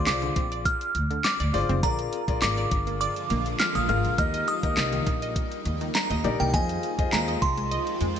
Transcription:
0.00 0.87 F4 medium
0.00 0.87 G#4 medium
0.00 0.87 C5 medium
0.00 0.87 D5 medium
0.07 0.29 C2 loud
0.07 0.17 D5 loud
0.07 0.62 D6 loud
0.07 snare loud
0.07 clap loud
0.07 closed hi-hat medium
0.22 0.31 D3 medium
0.22 closed hi-hat soft
0.36 0.70 A#1 medium
0.36 0.46 C4 medium
0.36 kick loud
0.36 closed hi-hat medium
0.52 0.61 D5 medium
0.52 closed hi-hat medium
0.65 1.26 F6 loud
0.65 kick loud
0.65 closed hi-hat medium
0.81 closed hi-hat medium
0.95 1.17 D2 medium
0.95 closed hi-hat medium
1.11 1.19 D3 medium
1.11 closed hi-hat medium
1.24 1.66 D6 loud
1.24 snare medium
1.24 clap loud
1.24 closed hi-hat loud
1.40 1.50 D2 medium
1.40 1.49 D5 medium
1.40 closed hi-hat medium
1.54 1.65 G1 medium
1.54 1.78 F4 medium
1.54 1.78 G#4 medium
1.54 1.78 C5 medium
1.54 1.78 D5 medium
1.54 open hi-hat medium
1.69 1.80 F1 loud
1.69 1.78 C4 medium
1.69 closed hi-hat soft
1.83 2.05 A#1 loud
1.83 4.16 D3 medium
1.83 1.93 D3 loud
1.83 4.16 F3 medium
1.83 4.16 G#3 medium
1.83 6.50 A#3 medium
1.83 2.19 F4 medium
1.83 4.16 F4 medium
1.83 2.19 G#4 medium
1.83 2.19 A#4 medium
1.83 2.19 D5 medium
1.83 2.44 A#5 loud
1.83 kick loud
1.83 closed hi-hat medium
1.99 closed hi-hat medium
2.13 closed hi-hat medium
2.28 2.38 A#1 loud
2.28 3.22 F4 medium
2.28 3.22 G#4 medium
2.28 3.22 A#4 medium
2.28 3.22 D5 medium
2.28 kick medium
2.28 closed hi-hat medium
2.42 2.64 G#1 loud
2.42 2.52 A#3 medium
2.42 2.99 D6 loud
2.42 snare loud
2.42 clap loud
2.42 closed hi-hat medium
2.57 2.66 D5 medium
2.57 closed hi-hat soft
2.71 3.05 G1 medium
2.71 kick loud
2.71 closed hi-hat medium
2.87 2.96 A#3 medium
2.87 closed hi-hat medium
3.01 3.11 D5 loud
3.01 3.61 D6 loud
3.01 closed hi-hat medium
3.16 closed hi-hat medium
3.30 3.52 A#1 loud
3.30 3.40 A#3 medium
3.30 closed hi-hat medium
3.46 closed hi-hat medium
3.60 3.76 F6 loud
3.60 snare loud
3.60 clap loud
3.60 closed hi-hat loud
3.75 3.86 A#1 medium
3.75 3.84 A#3 medium
3.75 3.90 D#6 loud
3.75 closed hi-hat medium
3.89 4.01 G#1 loud
3.89 4.13 F4 medium
3.89 4.13 G#4 medium
3.89 4.13 A#4 medium
3.89 4.13 F5 medium
3.89 4.17 F6 loud
3.89 closed hi-hat medium
4.05 4.15 A#1 loud
4.05 closed hi-hat soft
4.18 4.40 D#2 loud
4.18 6.51 G3 medium
4.18 4.54 D#4 medium
4.18 6.51 D#4 medium
4.18 4.54 G4 medium
4.18 4.54 A#4 medium
4.18 4.54 D#5 medium
4.18 4.46 F6 loud
4.18 kick loud
4.18 closed hi-hat medium
4.34 4.43 D#5 medium
4.34 closed hi-hat medium
4.48 5.99 D#6 loud
4.48 closed hi-hat medium
4.63 4.74 D#2 loud
4.63 4.72 A#3 medium
4.63 5.57 D#4 medium
4.63 5.57 G4 medium
4.63 5.58 A#4 medium
4.63 5.58 D#5 medium
4.63 kick medium
4.63 closed hi-hat medium
4.77 4.99 C2 loud
4.77 4.87 D#5 medium
4.77 snare loud
4.77 clap loud
4.77 closed hi-hat medium
4.93 5.02 D#3 medium
4.93 closed hi-hat soft
5.07 5.40 A#1 loud
5.07 5.17 A#3 medium
5.07 kick loud
5.07 closed hi-hat medium
5.22 5.31 D#5 medium
5.22 closed hi-hat medium
5.36 kick loud
5.36 closed hi-hat medium
5.52 closed hi-hat medium
5.65 5.87 D#2 loud
5.65 closed hi-hat medium
5.81 5.90 D#3 medium
5.81 closed hi-hat medium
5.95 6.41 A#5 medium
5.95 snare loud
5.95 clap loud
5.95 closed hi-hat loud
6.10 6.21 D#2 loud
6.10 6.19 D#5 medium
6.10 closed hi-hat medium
6.24 6.36 A#1 loud
6.24 6.48 D#4 medium
6.24 6.48 G4 medium
6.24 6.48 A#4 medium
6.24 6.48 D5 medium
6.24 closed hi-hat medium
6.40 6.55 C2 loud
6.40 6.49 A#3 medium
6.40 6.46 G5 medium
6.40 closed hi-hat soft
6.53 6.76 F2 loud
6.53 8.20 D#3 medium
6.53 6.64 D#3 loud
6.53 8.20 F3 medium
6.53 8.20 G#3 medium
6.53 8.20 C4 medium
6.53 6.89 F4 medium
6.53 8.20 F4 medium
6.53 6.89 G#4 medium
6.53 6.89 C5 medium
6.53 6.90 D#5 medium
6.53 7.14 G#5 loud
6.53 kick loud
6.53 closed hi-hat medium
6.69 closed hi-hat medium
6.83 closed hi-hat medium
6.98 7.09 F2 loud
6.98 7.93 F4 medium
6.98 7.93 G#4 medium
6.98 7.93 C5 medium
6.98 7.93 D#5 medium
6.98 kick medium
6.98 closed hi-hat medium
7.12 7.35 D#2 loud
7.12 7.22 G#3 loud
7.12 7.40 A#5 loud
7.12 snare loud
7.12 clap loud
7.12 closed hi-hat medium
7.28 7.37 D#5 medium
7.28 closed hi-hat soft
7.42 7.76 C2 medium
7.42 8.20 C6 loud
7.42 kick loud
7.42 closed hi-hat medium
7.57 7.66 G#3 medium
7.57 closed hi-hat medium
7.71 7.81 D#5 loud
7.71 closed hi-hat medium
7.87 closed hi-hat medium
8.01 8.20 F2 medium
8.01 8.11 G#3 medium
8.01 closed hi-hat medium
8.16 closed hi-hat medium

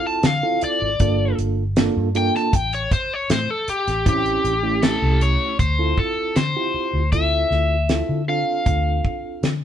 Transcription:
0.00 0.28 C4 medium
0.00 0.28 E4 medium
0.00 0.28 F4 medium
0.00 0.28 A4 medium
0.07 0.24 A5 medium
0.23 0.40 D3 loud
0.23 0.62 F5 loud
0.23 snare loud
0.23 closed hi-hat medium
0.43 0.89 C4 medium
0.43 0.89 E4 medium
0.43 0.89 F4 medium
0.43 0.89 A4 medium
0.61 1.37 D5 medium
0.61 muted fingered electric bass stroke soft
0.61 closed hi-hat medium
0.82 0.98 G#1 medium
1.00 1.33 G1 loud
1.00 1.62 A#3 medium
1.00 1.62 D4 medium
1.00 1.62 F4 medium
1.00 1.63 A4 medium
1.00 kick loud
1.00 closed hi-hat medium
1.38 1.88 G1 medium
1.38 closed hi-hat medium
1.76 2.08 A#3 medium
1.76 2.08 D4 medium
1.76 2.08 F4 medium
1.76 2.08 A4 loud
1.76 snare loud
1.76 closed hi-hat medium
1.96 2.29 G2 medium
2.15 2.53 A#3 medium
2.15 2.53 D4 medium
2.15 2.53 F4 medium
2.15 2.53 A4 medium
2.15 2.35 G5 loud
2.15 closed hi-hat medium
2.35 2.55 A5 medium
2.35 snare soft
2.53 2.86 A1 loud
2.53 2.73 G5 medium
2.53 kick loud
2.53 closed hi-hat medium
2.73 2.92 C#5 loud
2.73 closed hi-hat soft
2.91 3.14 C5 loud
2.91 kick medium
2.91 closed hi-hat medium
3.14 3.31 C#5 medium
3.30 3.46 A2 loud
3.30 3.50 C5 loud
3.30 snare loud
3.30 closed hi-hat medium
3.50 3.68 A4 medium
3.68 4.06 G4 medium
3.68 muted fingered electric bass stroke soft
3.68 closed hi-hat medium
3.87 4.37 A1 medium
3.87 snare soft
3.87 closed hi-hat soft
4.06 4.53 C4 medium
4.06 4.53 C#4 medium
4.06 4.53 E4 medium
4.06 4.53 G4 medium
4.06 5.57 G4 loud
4.06 kick loud
4.06 closed hi-hat medium
4.26 closed hi-hat soft
4.44 4.94 A1 medium
4.44 closed hi-hat medium
4.63 5.56 A3 medium
4.63 5.56 C#4 medium
4.63 5.56 E4 medium
4.63 5.56 G4 medium
4.83 5.23 A4 medium
4.83 snare loud
4.83 closed hi-hat medium
5.02 5.35 C2 medium
5.21 5.57 C#5 medium
5.21 closed hi-hat medium
5.59 5.92 D2 medium
5.59 5.99 C5 medium
5.59 kick loud
5.59 closed hi-hat medium
5.79 6.40 C4 medium
5.79 6.40 E4 medium
5.79 6.41 F4 medium
5.79 6.41 A4 medium
5.98 6.38 A4 medium
5.98 kick medium
6.36 6.53 D3 medium
6.36 7.12 C5 medium
6.36 snare loud
6.36 closed hi-hat medium
6.56 7.02 C4 medium
6.56 7.02 E4 medium
6.56 7.02 F4 medium
6.56 7.02 G4 medium
6.74 muted fingered electric bass stroke soft
6.93 7.43 D2 medium
7.12 7.75 C4 medium
7.12 7.75 E4 medium
7.12 7.75 F4 medium
7.12 7.75 A4 medium
7.12 8.24 E5 medium
7.12 kick medium
7.12 closed hi-hat medium
7.51 8.01 D2 medium
7.51 snare soft
7.89 8.21 C4 medium
7.89 8.21 E4 medium
7.89 8.21 F4 medium
7.89 8.21 A4 medium
7.89 snare medium
7.89 closed hi-hat medium
8.09 8.42 D3 medium
8.28 9.52 C4 medium
8.28 9.52 D4 medium
8.28 9.52 F4 medium
8.28 9.52 A4 medium
8.28 9.64 F5 loud
8.66 8.99 D2 medium
8.66 kick loud
8.66 closed hi-hat medium
9.05 kick medium
9.43 9.60 D3 medium
9.43 snare loud
9.43 closed hi-hat medium

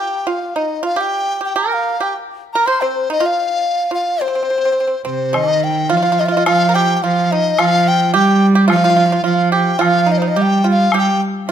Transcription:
0.00 0.25 G4 medium
0.00 0.30 G5 medium
0.27 0.54 F4 medium
0.27 0.58 F5 medium
0.56 0.82 D#4 medium
0.56 0.84 D#5 medium
0.83 0.97 F4 medium
0.83 1.03 F5 medium
0.96 1.37 G4 medium
1.01 1.43 G5 medium
1.41 1.54 G4 medium
1.45 1.59 G5 medium
1.56 1.95 A#4 medium
1.56 1.76 A#5 medium
1.74 2.04 F5 medium
2.00 2.12 G4 medium
2.00 2.15 G5 medium
2.53 2.67 A#4 medium
2.53 2.68 A#5 medium
2.66 2.81 C5 medium
2.66 2.82 C6 medium
2.81 3.08 C4 medium
2.81 3.09 C5 medium
3.10 3.20 D#4 medium
3.10 3.27 D#5 medium
3.20 3.87 F4 medium
3.26 3.94 F5 medium
3.91 4.17 F4 medium
3.91 4.24 F5 medium
4.21 4.27 C4 medium
4.21 5.05 C5 medium
4.28 4.34 C4 soft
4.35 4.41 C4 soft
4.43 4.49 C4 soft
4.50 4.57 C4 soft
4.58 4.64 C4 soft
4.65 4.71 C4 soft
4.72 4.79 C4 soft
4.80 4.86 C4 soft
4.87 4.94 C4 soft
5.05 5.35 C3 medium
5.05 5.31 C4 medium
5.05 5.36 C5 medium
5.33 5.93 D#3 medium
5.33 5.86 D#4 medium
5.33 5.65 D#5 loud
5.33 high woodblock medium
5.64 5.91 G5 medium
5.90 6.47 F3 medium
5.90 5.96 F4 medium
5.90 6.21 F5 medium
5.97 6.01 F4 soft
6.03 6.11 F4 medium
6.12 6.19 F4 medium
6.19 6.27 F4 medium
6.19 6.28 D#5 medium
6.26 6.35 F4 medium
6.26 6.34 F5 medium
6.32 6.46 D#5 medium
6.37 6.43 F4 medium
6.46 6.99 F3 medium
6.46 6.66 F4 medium
6.46 6.76 F5 loud
6.46 high woodblock medium
6.69 6.75 A#4 medium
6.75 7.01 G4 medium
6.75 6.97 G5 medium
6.97 7.04 G5 medium
7.03 7.55 F3 medium
7.03 7.29 F4 medium
7.03 7.33 F5 medium
7.31 7.57 D#4 medium
7.31 7.61 D#5 medium
7.59 8.16 F3 medium
7.59 8.10 F4 medium
7.59 7.89 F5 loud
7.59 high woodblock medium
7.88 8.14 G5 loud
8.14 8.71 G3 medium
8.14 8.52 G4 medium
8.14 8.47 G5 medium
8.55 8.67 G4 medium
8.68 9.23 F3 medium
8.68 8.75 F4 medium
8.68 high woodblock medium
8.72 9.22 F5 loud
8.76 8.83 F4 medium
8.84 8.89 F4 medium
8.90 8.95 F4 medium
8.96 9.04 F4 medium
9.06 9.11 F4 soft
9.12 9.20 F4 medium
9.24 9.76 F3 medium
9.24 9.50 F4 medium
9.24 9.52 F5 medium
9.52 9.79 G4 medium
9.52 9.84 G5 medium
9.79 10.37 F3 medium
9.79 10.06 F4 medium
9.79 10.13 F5 loud
9.79 high woodblock soft
10.06 10.20 D#4 medium
10.12 10.20 D#5 medium
10.18 10.35 D#4 medium
10.18 10.29 C5 medium
10.28 10.43 D#5 medium
10.36 10.91 G3 medium
10.36 10.62 G4 medium
10.42 10.67 G5 medium
10.64 10.90 F4 medium
10.71 10.94 F5 medium
10.91 11.18 G3 medium
10.91 11.19 G4 medium
10.91 high woodblock medium
10.98 11.21 G5 medium
11.47 11.52 F3 medium

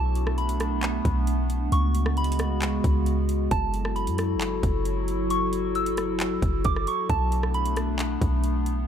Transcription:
0.00 1.01 B1 loud
0.00 1.70 A3 medium
0.00 1.70 B3 medium
0.00 1.70 D4 loud
0.00 0.35 A5 loud
0.15 closed hi-hat medium
0.27 cross-stick loud
0.38 1.23 B5 loud
0.38 closed hi-hat soft
0.49 closed hi-hat medium
0.60 cross-stick loud
0.60 closed hi-hat medium
0.83 clap loud
0.83 closed hi-hat medium
1.05 1.70 B1 loud
1.05 kick loud
1.05 closed hi-hat medium
1.27 closed hi-hat medium
1.50 closed hi-hat medium
1.72 2.80 C#2 loud
1.72 3.50 C#3 medium
1.72 3.50 G#3 medium
1.72 3.50 B3 medium
1.72 3.50 F#4 medium
1.72 2.14 C#6 medium
1.72 closed hi-hat medium
1.95 closed hi-hat medium
2.06 cross-stick loud
2.17 3.03 B5 loud
2.17 closed hi-hat soft
2.24 closed hi-hat medium
2.32 closed hi-hat medium
2.39 cross-stick loud
2.39 closed hi-hat medium
2.62 clap loud
2.62 closed hi-hat medium
2.84 3.49 C#2 loud
2.84 kick loud
2.84 closed hi-hat medium
3.06 closed hi-hat medium
3.29 closed hi-hat medium
3.51 4.09 F#1 loud
3.51 7.06 F#3 medium
3.51 7.06 E4 medium
3.51 7.06 F#4 medium
3.51 7.06 A4 loud
3.51 3.93 A5 loud
3.51 kick loud
3.51 closed hi-hat medium
3.74 closed hi-hat medium
3.85 cross-stick loud
3.96 4.81 B5 medium
3.96 closed hi-hat soft
4.07 4.37 F#2 loud
4.07 closed hi-hat medium
4.18 cross-stick loud
4.18 closed hi-hat medium
4.35 4.62 F#1 loud
4.41 clap loud
4.41 closed hi-hat medium
4.63 6.38 F#1 loud
4.63 kick medium
4.63 closed hi-hat medium
4.85 closed hi-hat medium
5.08 closed hi-hat medium
5.30 5.73 C#6 medium
5.30 closed hi-hat medium
5.53 closed hi-hat medium
5.75 6.61 E6 medium
5.75 closed hi-hat soft
5.86 closed hi-hat medium
5.97 cross-stick loud
5.97 closed hi-hat medium
6.20 clap loud
6.20 closed hi-hat medium
6.42 6.64 F#1 loud
6.42 kick loud
6.42 closed hi-hat medium
6.64 6.86 F#1 loud
6.64 6.86 D6 medium
6.64 kick loud
6.64 closed hi-hat medium
6.76 cross-stick medium
6.87 7.09 C#6 medium
6.87 closed hi-hat medium
7.10 8.17 B1 loud
7.10 8.87 A3 medium
7.10 8.87 B3 medium
7.10 8.87 D4 loud
7.10 7.52 A5 loud
7.10 kick loud
7.10 closed hi-hat medium
7.32 closed hi-hat medium
7.43 cross-stick loud
7.54 8.40 B5 medium
7.54 closed hi-hat soft
7.66 closed hi-hat medium
7.76 cross-stick loud
7.76 closed hi-hat medium
7.99 clap loud
7.99 closed hi-hat medium
8.21 8.86 B1 loud
8.21 kick loud
8.21 closed hi-hat medium
8.44 closed hi-hat medium
8.66 closed hi-hat medium

